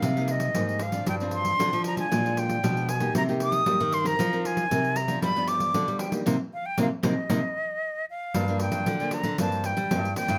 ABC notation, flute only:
X:1
M:4/4
L:1/16
Q:1/4=115
K:Cm
V:1 name="Flute"
f2 e4 f2 g2 c'4 b a- | a2 g4 a2 b2 e'4 c' b- | b2 a4 b2 =b2 d'4 g z | z2 f g f2 e8 f2- |
[K:Gm] f2 g4 b2 a2 g4 g2 |]